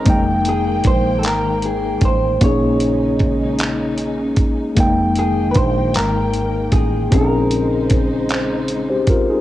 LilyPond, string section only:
\new Staff \with { instrumentName = "String section" } { \time 6/8 \key f \minor \tempo 4. = 51 << { <ees bes g''>2. | <des des' ees'>2. | <ees bes g''>2. | <des ees' c''>2. | } \\ { aes2. | aes2. | aes2.~ | aes2. | } >> }